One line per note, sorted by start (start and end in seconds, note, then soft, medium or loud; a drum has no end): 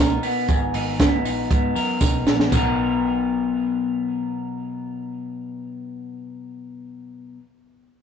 0.00 0.16 B1 medium
0.00 0.48 B2 medium
0.00 0.23 B3 medium
0.00 0.74 D#4 medium
0.00 1.03 A#4 medium
0.23 0.99 B3 medium
0.23 open hi-hat medium
0.23 tambourine soft
0.48 0.70 G#1 medium
0.48 2.52 G#2 medium
0.48 kick medium
0.48 closed hi-hat medium
0.48 tambourine medium
0.74 1.25 G#1 loud
0.74 1.25 D#4 medium
0.74 open hi-hat medium
0.74 tambourine soft
1.00 1.50 B3 medium
1.00 kick loud
1.00 snare loud
1.00 closed hi-hat medium
1.00 tambourine medium
1.25 1.47 A#1 medium
1.25 2.01 D#4 medium
1.25 open hi-hat medium
1.25 tambourine medium
1.50 1.72 G#2 loud
1.50 2.26 B3 medium
1.50 kick loud
1.50 closed hi-hat medium
1.50 tambourine soft
1.75 1.98 F#2 medium
1.75 2.55 A#4 medium
1.75 open hi-hat medium
1.75 tambourine medium
2.01 2.23 B1 medium
2.01 2.54 D#4 medium
2.01 kick loud
2.01 snare medium
2.01 tambourine medium
2.26 2.48 A#1 medium
2.26 2.52 B3 medium
2.26 snare medium
2.26 tambourine soft
2.40 snare medium
2.50 7.35 B1 medium
2.50 7.37 B2 medium
2.50 7.39 F#3 medium
2.50 7.40 B3 medium
2.50 kick medium
2.50 floor tom medium
2.50 tambourine medium
2.50 splash medium
2.54 7.41 D#4 medium
2.54 7.43 A#4 medium